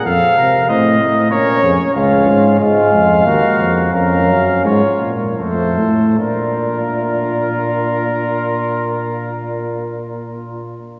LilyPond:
<<
  \new Staff \with { instrumentName = "Cornet" } { \time 3/4 \key f \phrygian \tempo 4 = 81 f''4 ees''4 des''4 | f''4 f''2 | f''4 des''8 r8 c''4 | bes'2.~ |
bes'2. | }
  \new Staff \with { instrumentName = "Flugelhorn" } { \time 3/4 \key f \phrygian a'8 bes'8 c''4 bes'8 aes'8 | f'4 f'4 ges'4 | bes'4 f'8 r8 a'4 | f'2.~ |
f'2. | }
  \new Staff \with { instrumentName = "Euphonium" } { \time 3/4 \key f \phrygian c'4 c'4 des'4 | des'4 aes4 bes4 | des'4. r8 a4 | d'2.~ |
d'2. | }
  \new Staff \with { instrumentName = "Tuba" } { \clef bass \time 3/4 \key f \phrygian f,8 c8 a,8 a,8 bes,8 f,8 | des,8 aes,8 aes,8 f,8 ees,8 f,8 | f,8 ges,8 aes,8 bes,8 f,8 a,8 | bes,2.~ |
bes,2. | }
>>